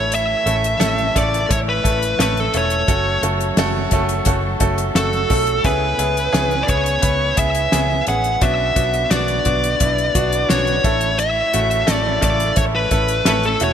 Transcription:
Already playing: fingered electric bass A1, grand piano A2 A3 C#4 E4 A4, string section E3 A3, lead electric guitar C#5
0.12 lead electric guitar E5, closed hi-hat
0.46 fingered electric bass A1, grand piano A3 C#4 E4 A4, closed hi-hat
0.64 closed hi-hat
0.79 fingered electric bass A1, grand piano A3 C#4 E4 A4, snare, closed hi-hat
0.98 closed hi-hat
1.15 fingered electric bass A1, grand piano C#3 A3 E4 A4, lead electric guitar D5, kick, closed hi-hat
1.34 closed hi-hat
1.49 fingered electric bass A1, grand piano A3 C#4 E4 A4, lead electric guitar C#5, kick, closed hi-hat
1.69 lead electric guitar B4
1.84 fingered electric bass A1, grand piano A3 C#4 E4 A4, kick, closed hi-hat
2.03 closed hi-hat
2.19 fingered electric bass A1, grand piano A3 C#4 E4 A4, lead electric guitar B4, snare, closed hi-hat
2.37 lead electric guitar A4, closed hi-hat
2.54 fingered electric bass E1, grand piano A3 C#4 E4 A4, lead electric guitar C#5, closed hi-hat
2.70 closed hi-hat
2.88 fingered electric bass F#1, string section F#3 A4, grand piano A3 C#4 F#4 A4, kick, closed hi-hat
3.23 fingered electric bass F#1, grand piano A3 C#4 F#4 A4, closed hi-hat
3.40 closed hi-hat
3.57 fingered electric bass F#1, grand piano A3 C#4 F#4 A4, snare, closed hi-hat
3.91 fingered electric bass F#1, grand piano A3 C#4 F#4 A4, kick, closed hi-hat
4.09 closed hi-hat
4.25 fingered electric bass F#1, grand piano A3 C#4 F#4 A4, kick, closed hi-hat
4.60 fingered electric bass F#1, grand piano A3 C#4 F#4 A4, kick, closed hi-hat
4.78 closed hi-hat
4.95 fingered electric bass F#1, grand piano A3 C#4 F#4 A4, lead electric guitar A4, snare, closed hi-hat
5.13 closed hi-hat
5.30 fingered electric bass B1, grand piano A3 C#4 F#4 A4, kick, open hi-hat
5.47 closed hi-hat
5.64 fingered electric bass C#2, grand piano C#3 B3 C#4 E4 G#4, string section C#3 B3 E4, lead electric guitar B4, kick, closed hi-hat
5.98 fingered electric bass C#2, grand piano B3 C#4 E4 G#4, closed hi-hat
6.17 closed hi-hat
6.33 fingered electric bass C#2, grand piano B3 C#4 E4 G#4, snare, closed hi-hat
6.51 closed hi-hat
6.63 grand piano B3 C#4 E4 G#4, lead electric guitar D5
6.68 fingered electric bass C#2, lead electric guitar C#5, kick, closed hi-hat
6.86 closed hi-hat
7.02 fingered electric bass C#2, grand piano B3 C#4 E4 B4, kick, closed hi-hat
7.37 fingered electric bass C#2, grand piano B3 C#4 E4 G#4, lead electric guitar E5, kick, closed hi-hat
7.55 closed hi-hat
7.72 fingered electric bass C#2, grand piano B3 C#4 E4 G#4, snare, closed hi-hat
8.07 fingered electric bass A1, grand piano B3 C#4 E4 G#4, lead electric guitar F#5, closed hi-hat
8.24 closed hi-hat
8.41 fingered electric bass B1, grand piano B2 B3 C#4 D4 F#4, string section D3, lead electric guitar E5, kick, closed hi-hat
8.76 fingered electric bass B1, grand piano B3 C#4 D4 F#4, kick, closed hi-hat
8.94 closed hi-hat
9.10 fingered electric bass B1, grand piano B3 D4 F#4, lead electric guitar D5, snare, closed hi-hat
9.28 closed hi-hat
9.45 fingered electric bass B1, grand piano B3 D4 F#4, kick, closed hi-hat
9.64 closed hi-hat
9.80 fingered electric bass B1, grand piano B3 D4 E4, kick, closed hi-hat
9.98 closed hi-hat
10.15 fingered electric bass B1, grand piano B3 D4 F#4, kick, closed hi-hat
10.32 closed hi-hat
10.49 fingered electric bass B1, grand piano B3 C#4 D4 F#4, lead electric guitar C#5, snare, closed hi-hat
10.67 closed hi-hat
10.84 fingered electric bass A1, grand piano A2 A3 C#4 E4 A4, string section E3 A3, kick, closed hi-hat
11.01 closed hi-hat
11.19 lead electric guitar E5, closed hi-hat
11.53 fingered electric bass A1, grand piano A3 C#4 E4 F#4, closed hi-hat
11.71 closed hi-hat
11.87 fingered electric bass A1, grand piano A3 C#4 E4 A4, snare, closed hi-hat
11.94 lead electric guitar D5
12.21 fingered electric bass A1, grand piano C#3 A3 E4 A4, lead electric guitar D5, kick, closed hi-hat
12.40 closed hi-hat
12.56 fingered electric bass A1, grand piano A3 C#4 E4 A4, lead electric guitar C#5, kick, closed hi-hat
12.75 lead electric guitar B4
12.91 fingered electric bass A1, grand piano A3 C#4 E4 A4, kick, closed hi-hat
13.08 closed hi-hat
13.25 fingered electric bass A1, grand piano A3 C#4 E4 A4, lead electric guitar B4, snare, closed hi-hat
13.43 lead electric guitar A4, closed hi-hat
13.60 fingered electric bass E1, grand piano A3 C#4 E4 F#4, lead electric guitar C#5, closed hi-hat

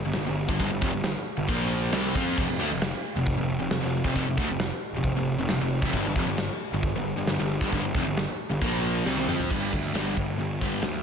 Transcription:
0.05 picked electric bass G1, overdriven electric guitar G2 D3
0.13 picked electric bass G1, overdriven electric guitar G2 D3, snare, open hi-hat
0.27 picked electric bass G1, overdriven electric guitar G2 D3
0.48 picked electric bass G1, overdriven electric guitar G2 D3, kick
0.59 picked electric bass G1, overdriven electric guitar G2 D3, kick, open hi-hat
0.71 picked electric bass G1, overdriven electric guitar G2 D3
0.81 picked electric bass F1, overdriven electric guitar F2 C3, kick
0.93 picked electric bass G1, overdriven electric guitar G2 D3
1.04 snare, open hi-hat
1.37 picked electric bass G1, overdriven electric guitar G2 D3
1.48 picked electric bass A#1, overdriven electric guitar A#2 F3 A#3, kick, open hi-hat
1.92 picked electric bass C2, overdriven electric guitar C3 G3 C4, snare, open hi-hat
2.15 picked electric bass F2, overdriven electric guitar F3 C4 F4, kick
2.38 picked electric bass F1, overdriven electric guitar F2 C3, kick, crash
2.49 picked electric bass F1, overdriven electric guitar F2 C3
2.60 picked electric bass D2, overdriven electric guitar D3 A3
2.72 picked electric bass F1, overdriven electric guitar F2 C3
2.82 snare, open hi-hat
3.16 picked electric bass F1, overdriven electric guitar F2 C3
3.26 kick, open hi-hat
3.38 picked electric bass F1, overdriven electric guitar F2 C3
3.59 picked electric bass F1, overdriven electric guitar F2 C3
3.71 picked electric bass F1, overdriven electric guitar F2 C3, snare, open hi-hat
3.83 picked electric bass F1, overdriven electric guitar F2 C3
4.04 picked electric bass F1, overdriven electric guitar F2 C3, kick
4.15 picked electric bass F1, overdriven electric guitar F2 C3, kick, open hi-hat
4.25 picked electric bass F1, overdriven electric guitar F2 C3
4.37 picked electric bass D2, overdriven electric guitar D3 A3, kick
4.49 picked electric bass F1, overdriven electric guitar F2 C3
4.60 snare, open hi-hat
4.93 picked electric bass F1, overdriven electric guitar F2
4.97 overdriven electric guitar C3
5.03 kick, open hi-hat
5.15 picked electric bass F1, overdriven electric guitar F2 C3
5.38 picked electric bass F1, overdriven electric guitar F2 C3
5.49 picked electric bass F1, overdriven electric guitar F2 C3, snare, open hi-hat
5.60 picked electric bass F1, overdriven electric guitar F2 C3
5.82 picked electric bass F1, overdriven electric guitar F2 C3, kick
5.93 picked electric bass G1, overdriven electric guitar G2 D3, kick, crash
6.04 picked electric bass G1, overdriven electric guitar G2 D3
6.16 picked electric bass F1, overdriven electric guitar F2 C3, kick
6.26 picked electric bass G1, overdriven electric guitar G2 D3
6.38 snare, open hi-hat
6.72 picked electric bass G1, overdriven electric guitar G2 D3
6.83 kick, open hi-hat
6.95 picked electric bass G1, overdriven electric guitar G2 D3
7.16 picked electric bass G1, overdriven electric guitar G2 D3
7.27 picked electric bass G1, overdriven electric guitar G2 D3, snare, open hi-hat
7.39 picked electric bass G1, overdriven electric guitar G2 D3
7.61 picked electric bass G1, overdriven electric guitar G2 D3, kick
7.72 picked electric bass G1, overdriven electric guitar G2 D3, kick, open hi-hat
7.82 picked electric bass G1, overdriven electric guitar G2 D3
7.95 picked electric bass F1, overdriven electric guitar F2 C3, kick
8.06 picked electric bass G1, overdriven electric guitar G2 D3
8.17 snare, open hi-hat
8.50 picked electric bass G1, overdriven electric guitar G2 D3
8.61 picked electric bass A#1, overdriven electric guitar A#2 F3 A#3, kick, open hi-hat
9.05 picked electric bass C2, overdriven electric guitar C3 G3 C4, snare
9.17 high tom
9.27 picked electric bass F2, overdriven electric guitar F3 C4 F4, mid tom
9.39 floor tom
9.50 picked electric bass G1, overdriven electric guitar G2 D3 G3, kick, crash
9.73 picked electric bass D2, overdriven electric guitar G2 D3, kick, open hi-hat
9.93 picked electric bass G1, overdriven electric guitar G2 D3 G3, snare, open hi-hat
10.17 picked electric bass G1, overdriven electric guitar G2 D3, kick, open hi-hat
10.38 picked electric bass G1, overdriven electric guitar G2 D3, open hi-hat
10.61 picked electric bass G1, overdriven electric guitar G2 D3 G3, kick, open hi-hat
10.83 picked electric bass D2, overdriven electric guitar G2 D3, snare, open hi-hat

